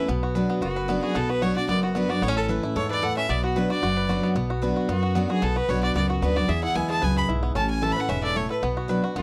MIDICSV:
0, 0, Header, 1, 5, 480
1, 0, Start_track
1, 0, Tempo, 266904
1, 153, Time_signature, 4, 2, 24, 8
1, 16588, End_track
2, 0, Start_track
2, 0, Title_t, "Fiddle"
2, 0, Program_c, 0, 110
2, 1095, Note_on_c, 0, 66, 68
2, 1789, Note_off_c, 0, 66, 0
2, 1840, Note_on_c, 0, 68, 78
2, 2081, Note_on_c, 0, 69, 74
2, 2108, Note_off_c, 0, 68, 0
2, 2324, Note_on_c, 0, 71, 86
2, 2351, Note_off_c, 0, 69, 0
2, 2554, Note_on_c, 0, 73, 81
2, 2581, Note_off_c, 0, 71, 0
2, 2798, Note_off_c, 0, 73, 0
2, 2809, Note_on_c, 0, 74, 80
2, 3018, Note_off_c, 0, 74, 0
2, 3034, Note_on_c, 0, 74, 83
2, 3273, Note_off_c, 0, 74, 0
2, 3301, Note_on_c, 0, 66, 40
2, 3515, Note_on_c, 0, 71, 77
2, 3542, Note_off_c, 0, 66, 0
2, 3776, Note_on_c, 0, 74, 84
2, 3803, Note_off_c, 0, 71, 0
2, 4007, Note_on_c, 0, 73, 92
2, 4034, Note_off_c, 0, 74, 0
2, 4246, Note_off_c, 0, 73, 0
2, 4257, Note_on_c, 0, 69, 93
2, 4389, Note_off_c, 0, 69, 0
2, 4967, Note_on_c, 0, 73, 86
2, 5200, Note_off_c, 0, 73, 0
2, 5224, Note_on_c, 0, 74, 93
2, 5444, Note_on_c, 0, 78, 98
2, 5471, Note_off_c, 0, 74, 0
2, 5685, Note_off_c, 0, 78, 0
2, 5696, Note_on_c, 0, 76, 90
2, 5935, Note_on_c, 0, 74, 89
2, 5962, Note_off_c, 0, 76, 0
2, 6182, Note_off_c, 0, 74, 0
2, 6192, Note_on_c, 0, 66, 48
2, 6422, Note_on_c, 0, 71, 83
2, 6449, Note_off_c, 0, 66, 0
2, 6658, Note_off_c, 0, 71, 0
2, 6669, Note_on_c, 0, 74, 85
2, 7660, Note_off_c, 0, 74, 0
2, 8798, Note_on_c, 0, 66, 67
2, 9482, Note_off_c, 0, 66, 0
2, 9533, Note_on_c, 0, 68, 83
2, 9756, Note_on_c, 0, 69, 75
2, 9783, Note_off_c, 0, 68, 0
2, 10006, Note_on_c, 0, 71, 87
2, 10033, Note_off_c, 0, 69, 0
2, 10238, Note_on_c, 0, 73, 80
2, 10265, Note_off_c, 0, 71, 0
2, 10472, Note_off_c, 0, 73, 0
2, 10482, Note_on_c, 0, 74, 83
2, 10694, Note_off_c, 0, 74, 0
2, 10702, Note_on_c, 0, 74, 84
2, 10946, Note_off_c, 0, 74, 0
2, 10961, Note_on_c, 0, 66, 42
2, 11192, Note_on_c, 0, 71, 77
2, 11219, Note_off_c, 0, 66, 0
2, 11444, Note_on_c, 0, 74, 82
2, 11471, Note_off_c, 0, 71, 0
2, 11658, Note_on_c, 0, 76, 80
2, 11685, Note_off_c, 0, 74, 0
2, 11913, Note_off_c, 0, 76, 0
2, 11924, Note_on_c, 0, 78, 94
2, 12147, Note_on_c, 0, 80, 84
2, 12174, Note_off_c, 0, 78, 0
2, 12393, Note_off_c, 0, 80, 0
2, 12404, Note_on_c, 0, 81, 96
2, 12645, Note_on_c, 0, 80, 88
2, 12672, Note_off_c, 0, 81, 0
2, 12889, Note_off_c, 0, 80, 0
2, 12900, Note_on_c, 0, 83, 99
2, 13031, Note_off_c, 0, 83, 0
2, 13596, Note_on_c, 0, 81, 91
2, 13833, Note_off_c, 0, 81, 0
2, 13845, Note_on_c, 0, 80, 86
2, 14070, Note_on_c, 0, 81, 94
2, 14097, Note_off_c, 0, 80, 0
2, 14236, Note_on_c, 0, 83, 94
2, 14263, Note_off_c, 0, 81, 0
2, 14389, Note_on_c, 0, 78, 88
2, 14416, Note_off_c, 0, 83, 0
2, 14545, Note_on_c, 0, 76, 83
2, 14572, Note_off_c, 0, 78, 0
2, 14795, Note_off_c, 0, 76, 0
2, 14806, Note_on_c, 0, 74, 94
2, 15039, Note_on_c, 0, 73, 85
2, 15066, Note_off_c, 0, 74, 0
2, 15280, Note_off_c, 0, 73, 0
2, 15291, Note_on_c, 0, 71, 79
2, 15497, Note_off_c, 0, 71, 0
2, 16487, Note_on_c, 0, 66, 69
2, 16588, Note_off_c, 0, 66, 0
2, 16588, End_track
3, 0, Start_track
3, 0, Title_t, "Five-string banjo"
3, 0, Program_c, 1, 105
3, 153, Note_on_c, 1, 59, 72
3, 414, Note_on_c, 1, 66, 50
3, 631, Note_on_c, 1, 71, 55
3, 838, Note_off_c, 1, 59, 0
3, 893, Note_on_c, 1, 59, 67
3, 1071, Note_off_c, 1, 66, 0
3, 1114, Note_on_c, 1, 66, 63
3, 1318, Note_off_c, 1, 71, 0
3, 1372, Note_on_c, 1, 71, 57
3, 1551, Note_off_c, 1, 59, 0
3, 1596, Note_on_c, 1, 59, 70
3, 1799, Note_off_c, 1, 66, 0
3, 1847, Note_on_c, 1, 66, 64
3, 2030, Note_off_c, 1, 71, 0
3, 2046, Note_off_c, 1, 59, 0
3, 2068, Note_on_c, 1, 59, 75
3, 2308, Note_off_c, 1, 66, 0
3, 2329, Note_on_c, 1, 66, 54
3, 2531, Note_off_c, 1, 66, 0
3, 2553, Note_on_c, 1, 66, 56
3, 2757, Note_off_c, 1, 59, 0
3, 2793, Note_off_c, 1, 66, 0
3, 2814, Note_on_c, 1, 66, 55
3, 3031, Note_on_c, 1, 59, 67
3, 3270, Note_off_c, 1, 66, 0
3, 3292, Note_on_c, 1, 66, 60
3, 3484, Note_off_c, 1, 59, 0
3, 3506, Note_on_c, 1, 59, 65
3, 3742, Note_off_c, 1, 66, 0
3, 3764, Note_on_c, 1, 66, 64
3, 3975, Note_off_c, 1, 59, 0
3, 3991, Note_off_c, 1, 66, 0
3, 3996, Note_on_c, 1, 59, 75
3, 4102, Note_off_c, 1, 59, 0
3, 4102, Note_on_c, 1, 61, 78
3, 4257, Note_on_c, 1, 69, 53
3, 4477, Note_off_c, 1, 61, 0
3, 4484, Note_on_c, 1, 71, 59
3, 4738, Note_on_c, 1, 64, 60
3, 4913, Note_off_c, 1, 69, 0
3, 4968, Note_on_c, 1, 69, 67
3, 5165, Note_off_c, 1, 71, 0
3, 5224, Note_on_c, 1, 71, 59
3, 5394, Note_off_c, 1, 64, 0
3, 5427, Note_off_c, 1, 69, 0
3, 5448, Note_on_c, 1, 69, 54
3, 5702, Note_on_c, 1, 61, 67
3, 5877, Note_off_c, 1, 71, 0
3, 5912, Note_off_c, 1, 61, 0
3, 5920, Note_on_c, 1, 59, 73
3, 5922, Note_off_c, 1, 69, 0
3, 6180, Note_on_c, 1, 66, 51
3, 6404, Note_on_c, 1, 71, 55
3, 6603, Note_off_c, 1, 59, 0
3, 6635, Note_off_c, 1, 66, 0
3, 6657, Note_on_c, 1, 66, 59
3, 6860, Note_off_c, 1, 66, 0
3, 6882, Note_on_c, 1, 66, 69
3, 7085, Note_off_c, 1, 71, 0
3, 7133, Note_on_c, 1, 71, 54
3, 7339, Note_off_c, 1, 66, 0
3, 7361, Note_on_c, 1, 66, 55
3, 7614, Note_on_c, 1, 59, 64
3, 7791, Note_off_c, 1, 71, 0
3, 7816, Note_off_c, 1, 59, 0
3, 7838, Note_off_c, 1, 66, 0
3, 7838, Note_on_c, 1, 59, 71
3, 8095, Note_on_c, 1, 66, 56
3, 8315, Note_on_c, 1, 71, 54
3, 8544, Note_off_c, 1, 66, 0
3, 8566, Note_on_c, 1, 66, 55
3, 8782, Note_off_c, 1, 59, 0
3, 8789, Note_on_c, 1, 59, 66
3, 9021, Note_off_c, 1, 66, 0
3, 9043, Note_on_c, 1, 66, 60
3, 9258, Note_off_c, 1, 59, 0
3, 9265, Note_on_c, 1, 59, 67
3, 9507, Note_off_c, 1, 66, 0
3, 9528, Note_on_c, 1, 66, 64
3, 9740, Note_off_c, 1, 59, 0
3, 9748, Note_on_c, 1, 59, 73
3, 9978, Note_off_c, 1, 66, 0
3, 10000, Note_on_c, 1, 66, 55
3, 10224, Note_off_c, 1, 71, 0
3, 10231, Note_on_c, 1, 71, 57
3, 10436, Note_off_c, 1, 59, 0
3, 10464, Note_off_c, 1, 66, 0
3, 10486, Note_on_c, 1, 66, 59
3, 10712, Note_on_c, 1, 59, 64
3, 10918, Note_off_c, 1, 71, 0
3, 10944, Note_off_c, 1, 66, 0
3, 10966, Note_on_c, 1, 66, 54
3, 11171, Note_off_c, 1, 59, 0
3, 11193, Note_on_c, 1, 59, 67
3, 11423, Note_off_c, 1, 66, 0
3, 11445, Note_on_c, 1, 66, 64
3, 11667, Note_on_c, 1, 68, 65
3, 11671, Note_off_c, 1, 66, 0
3, 11674, Note_off_c, 1, 59, 0
3, 11920, Note_on_c, 1, 64, 50
3, 12146, Note_on_c, 1, 59, 59
3, 12355, Note_off_c, 1, 68, 0
3, 12405, Note_on_c, 1, 68, 57
3, 12584, Note_off_c, 1, 64, 0
3, 12621, Note_on_c, 1, 71, 63
3, 12835, Note_off_c, 1, 59, 0
3, 12861, Note_off_c, 1, 68, 0
3, 12882, Note_on_c, 1, 68, 57
3, 13105, Note_on_c, 1, 64, 54
3, 13312, Note_off_c, 1, 71, 0
3, 13357, Note_on_c, 1, 59, 63
3, 13545, Note_off_c, 1, 68, 0
3, 13575, Note_off_c, 1, 59, 0
3, 13582, Note_on_c, 1, 61, 77
3, 13589, Note_off_c, 1, 64, 0
3, 14071, Note_on_c, 1, 69, 60
3, 14272, Note_off_c, 1, 61, 0
3, 14320, Note_on_c, 1, 71, 57
3, 14549, Note_on_c, 1, 61, 64
3, 14757, Note_off_c, 1, 69, 0
3, 14807, Note_on_c, 1, 69, 56
3, 14983, Note_off_c, 1, 71, 0
3, 15032, Note_on_c, 1, 57, 57
3, 15235, Note_off_c, 1, 61, 0
3, 15272, Note_off_c, 1, 69, 0
3, 15294, Note_on_c, 1, 69, 62
3, 15512, Note_off_c, 1, 57, 0
3, 15514, Note_off_c, 1, 69, 0
3, 15517, Note_on_c, 1, 59, 76
3, 15769, Note_on_c, 1, 66, 51
3, 15994, Note_on_c, 1, 71, 57
3, 16199, Note_off_c, 1, 59, 0
3, 16231, Note_off_c, 1, 66, 0
3, 16252, Note_on_c, 1, 66, 59
3, 16473, Note_on_c, 1, 59, 64
3, 16588, Note_off_c, 1, 59, 0
3, 16588, Note_off_c, 1, 66, 0
3, 16588, Note_off_c, 1, 71, 0
3, 16588, End_track
4, 0, Start_track
4, 0, Title_t, "Steel-string acoustic guitar"
4, 0, Program_c, 2, 25
4, 162, Note_on_c, 2, 47, 90
4, 635, Note_on_c, 2, 54, 76
4, 644, Note_on_c, 2, 59, 86
4, 660, Note_on_c, 2, 62, 89
4, 676, Note_on_c, 2, 66, 80
4, 1073, Note_off_c, 2, 47, 0
4, 1092, Note_off_c, 2, 54, 0
4, 1097, Note_off_c, 2, 59, 0
4, 1105, Note_off_c, 2, 62, 0
4, 1112, Note_off_c, 2, 66, 0
4, 1122, Note_on_c, 2, 42, 90
4, 1584, Note_on_c, 2, 54, 88
4, 1600, Note_on_c, 2, 59, 89
4, 1614, Note_on_c, 2, 62, 96
4, 1622, Note_on_c, 2, 66, 93
4, 2033, Note_off_c, 2, 42, 0
4, 2047, Note_off_c, 2, 54, 0
4, 2055, Note_off_c, 2, 59, 0
4, 2062, Note_off_c, 2, 62, 0
4, 2066, Note_off_c, 2, 66, 0
4, 2079, Note_on_c, 2, 47, 94
4, 2554, Note_on_c, 2, 54, 82
4, 2568, Note_on_c, 2, 59, 85
4, 2579, Note_on_c, 2, 62, 81
4, 2596, Note_on_c, 2, 66, 89
4, 2796, Note_off_c, 2, 66, 0
4, 2801, Note_off_c, 2, 54, 0
4, 2808, Note_off_c, 2, 59, 0
4, 2813, Note_off_c, 2, 62, 0
4, 2818, Note_on_c, 2, 66, 58
4, 2851, Note_on_c, 2, 62, 48
4, 2993, Note_off_c, 2, 47, 0
4, 3029, Note_off_c, 2, 66, 0
4, 3041, Note_on_c, 2, 42, 92
4, 3045, Note_off_c, 2, 62, 0
4, 3509, Note_on_c, 2, 54, 83
4, 3524, Note_on_c, 2, 59, 90
4, 3534, Note_on_c, 2, 62, 101
4, 3545, Note_on_c, 2, 66, 94
4, 3758, Note_off_c, 2, 54, 0
4, 3758, Note_off_c, 2, 66, 0
4, 3766, Note_off_c, 2, 59, 0
4, 3771, Note_off_c, 2, 62, 0
4, 3779, Note_on_c, 2, 66, 57
4, 3813, Note_on_c, 2, 62, 48
4, 3953, Note_off_c, 2, 42, 0
4, 3990, Note_off_c, 2, 66, 0
4, 4007, Note_off_c, 2, 62, 0
4, 4014, Note_on_c, 2, 45, 93
4, 4465, Note_on_c, 2, 52, 84
4, 4480, Note_on_c, 2, 57, 91
4, 4492, Note_on_c, 2, 61, 88
4, 4505, Note_on_c, 2, 64, 93
4, 4710, Note_off_c, 2, 64, 0
4, 4717, Note_off_c, 2, 52, 0
4, 4724, Note_off_c, 2, 57, 0
4, 4730, Note_off_c, 2, 61, 0
4, 4731, Note_on_c, 2, 64, 60
4, 4767, Note_on_c, 2, 61, 46
4, 4920, Note_off_c, 2, 45, 0
4, 4946, Note_off_c, 2, 64, 0
4, 4962, Note_on_c, 2, 44, 92
4, 4964, Note_off_c, 2, 61, 0
4, 5416, Note_off_c, 2, 44, 0
4, 5435, Note_on_c, 2, 45, 88
4, 5893, Note_off_c, 2, 45, 0
4, 5917, Note_on_c, 2, 47, 85
4, 6401, Note_on_c, 2, 54, 77
4, 6417, Note_on_c, 2, 59, 84
4, 6431, Note_on_c, 2, 62, 84
4, 6442, Note_on_c, 2, 66, 95
4, 6634, Note_off_c, 2, 66, 0
4, 6645, Note_off_c, 2, 54, 0
4, 6653, Note_off_c, 2, 59, 0
4, 6656, Note_on_c, 2, 66, 61
4, 6660, Note_off_c, 2, 62, 0
4, 6691, Note_on_c, 2, 62, 46
4, 6832, Note_off_c, 2, 47, 0
4, 6869, Note_off_c, 2, 66, 0
4, 6886, Note_off_c, 2, 62, 0
4, 6895, Note_on_c, 2, 42, 90
4, 7352, Note_on_c, 2, 54, 80
4, 7365, Note_on_c, 2, 59, 87
4, 7381, Note_on_c, 2, 62, 94
4, 7390, Note_on_c, 2, 66, 100
4, 7801, Note_off_c, 2, 42, 0
4, 7812, Note_off_c, 2, 54, 0
4, 7818, Note_off_c, 2, 59, 0
4, 7826, Note_off_c, 2, 62, 0
4, 7831, Note_off_c, 2, 66, 0
4, 7832, Note_on_c, 2, 47, 89
4, 8302, Note_on_c, 2, 54, 79
4, 8317, Note_on_c, 2, 59, 79
4, 8327, Note_on_c, 2, 62, 94
4, 8342, Note_on_c, 2, 66, 93
4, 8749, Note_off_c, 2, 47, 0
4, 8766, Note_off_c, 2, 54, 0
4, 8774, Note_off_c, 2, 59, 0
4, 8779, Note_off_c, 2, 62, 0
4, 8786, Note_off_c, 2, 66, 0
4, 8792, Note_on_c, 2, 42, 88
4, 9269, Note_on_c, 2, 54, 92
4, 9283, Note_on_c, 2, 59, 95
4, 9293, Note_on_c, 2, 62, 86
4, 9302, Note_on_c, 2, 66, 101
4, 9496, Note_off_c, 2, 66, 0
4, 9517, Note_on_c, 2, 66, 55
4, 9518, Note_off_c, 2, 54, 0
4, 9526, Note_off_c, 2, 59, 0
4, 9530, Note_off_c, 2, 62, 0
4, 9559, Note_on_c, 2, 62, 42
4, 9709, Note_off_c, 2, 42, 0
4, 9739, Note_off_c, 2, 66, 0
4, 9750, Note_on_c, 2, 47, 87
4, 9760, Note_off_c, 2, 62, 0
4, 10224, Note_on_c, 2, 54, 75
4, 10242, Note_on_c, 2, 59, 81
4, 10251, Note_on_c, 2, 62, 96
4, 10263, Note_on_c, 2, 66, 81
4, 10667, Note_off_c, 2, 47, 0
4, 10687, Note_off_c, 2, 54, 0
4, 10696, Note_off_c, 2, 59, 0
4, 10700, Note_off_c, 2, 62, 0
4, 10706, Note_off_c, 2, 66, 0
4, 10709, Note_on_c, 2, 42, 92
4, 11191, Note_on_c, 2, 54, 87
4, 11206, Note_on_c, 2, 59, 90
4, 11220, Note_on_c, 2, 62, 94
4, 11226, Note_on_c, 2, 66, 99
4, 11413, Note_off_c, 2, 66, 0
4, 11434, Note_on_c, 2, 66, 54
4, 11439, Note_off_c, 2, 54, 0
4, 11447, Note_off_c, 2, 59, 0
4, 11449, Note_off_c, 2, 62, 0
4, 11470, Note_on_c, 2, 62, 47
4, 11627, Note_off_c, 2, 42, 0
4, 11657, Note_off_c, 2, 66, 0
4, 11668, Note_on_c, 2, 40, 88
4, 11675, Note_off_c, 2, 62, 0
4, 12147, Note_on_c, 2, 52, 82
4, 12158, Note_on_c, 2, 56, 87
4, 12178, Note_on_c, 2, 59, 86
4, 12185, Note_on_c, 2, 64, 97
4, 12586, Note_off_c, 2, 40, 0
4, 12608, Note_off_c, 2, 52, 0
4, 12613, Note_off_c, 2, 56, 0
4, 12623, Note_off_c, 2, 59, 0
4, 12627, Note_off_c, 2, 64, 0
4, 12629, Note_on_c, 2, 42, 94
4, 13089, Note_off_c, 2, 42, 0
4, 13117, Note_on_c, 2, 44, 88
4, 13573, Note_off_c, 2, 44, 0
4, 13593, Note_on_c, 2, 45, 94
4, 14057, Note_on_c, 2, 52, 82
4, 14070, Note_on_c, 2, 57, 94
4, 14085, Note_on_c, 2, 61, 94
4, 14099, Note_on_c, 2, 64, 97
4, 14301, Note_off_c, 2, 64, 0
4, 14311, Note_off_c, 2, 52, 0
4, 14317, Note_off_c, 2, 57, 0
4, 14323, Note_on_c, 2, 64, 57
4, 14325, Note_off_c, 2, 61, 0
4, 14365, Note_on_c, 2, 61, 44
4, 14508, Note_off_c, 2, 45, 0
4, 14540, Note_off_c, 2, 64, 0
4, 14557, Note_on_c, 2, 44, 92
4, 14561, Note_off_c, 2, 61, 0
4, 15012, Note_off_c, 2, 44, 0
4, 15036, Note_on_c, 2, 45, 90
4, 15491, Note_off_c, 2, 45, 0
4, 15517, Note_on_c, 2, 47, 89
4, 15972, Note_on_c, 2, 54, 80
4, 15988, Note_on_c, 2, 59, 78
4, 16000, Note_on_c, 2, 62, 83
4, 16017, Note_on_c, 2, 66, 91
4, 16226, Note_off_c, 2, 66, 0
4, 16227, Note_off_c, 2, 54, 0
4, 16236, Note_off_c, 2, 59, 0
4, 16242, Note_off_c, 2, 62, 0
4, 16247, Note_on_c, 2, 66, 54
4, 16281, Note_on_c, 2, 62, 47
4, 16429, Note_off_c, 2, 47, 0
4, 16462, Note_off_c, 2, 66, 0
4, 16474, Note_on_c, 2, 42, 94
4, 16479, Note_off_c, 2, 62, 0
4, 16588, Note_off_c, 2, 42, 0
4, 16588, End_track
5, 0, Start_track
5, 0, Title_t, "Upright bass"
5, 0, Program_c, 3, 32
5, 144, Note_on_c, 3, 35, 83
5, 787, Note_off_c, 3, 35, 0
5, 1099, Note_on_c, 3, 30, 81
5, 1743, Note_off_c, 3, 30, 0
5, 2064, Note_on_c, 3, 35, 82
5, 2707, Note_off_c, 3, 35, 0
5, 3024, Note_on_c, 3, 30, 78
5, 3667, Note_off_c, 3, 30, 0
5, 3982, Note_on_c, 3, 33, 91
5, 4626, Note_off_c, 3, 33, 0
5, 4950, Note_on_c, 3, 40, 82
5, 5591, Note_off_c, 3, 40, 0
5, 5912, Note_on_c, 3, 35, 85
5, 6553, Note_off_c, 3, 35, 0
5, 6873, Note_on_c, 3, 30, 79
5, 7513, Note_off_c, 3, 30, 0
5, 7825, Note_on_c, 3, 35, 89
5, 8468, Note_off_c, 3, 35, 0
5, 8787, Note_on_c, 3, 42, 80
5, 9429, Note_off_c, 3, 42, 0
5, 9744, Note_on_c, 3, 35, 86
5, 10067, Note_off_c, 3, 35, 0
5, 10225, Note_on_c, 3, 35, 81
5, 10637, Note_off_c, 3, 35, 0
5, 10697, Note_on_c, 3, 37, 81
5, 11112, Note_off_c, 3, 37, 0
5, 11177, Note_on_c, 3, 38, 80
5, 11593, Note_off_c, 3, 38, 0
5, 11664, Note_on_c, 3, 40, 88
5, 11987, Note_off_c, 3, 40, 0
5, 12141, Note_on_c, 3, 38, 84
5, 12554, Note_off_c, 3, 38, 0
5, 12627, Note_on_c, 3, 37, 84
5, 13037, Note_off_c, 3, 37, 0
5, 13099, Note_on_c, 3, 35, 83
5, 13513, Note_off_c, 3, 35, 0
5, 13580, Note_on_c, 3, 33, 91
5, 14223, Note_off_c, 3, 33, 0
5, 14542, Note_on_c, 3, 28, 84
5, 15184, Note_off_c, 3, 28, 0
5, 15503, Note_on_c, 3, 35, 86
5, 16144, Note_off_c, 3, 35, 0
5, 16469, Note_on_c, 3, 30, 83
5, 16588, Note_off_c, 3, 30, 0
5, 16588, End_track
0, 0, End_of_file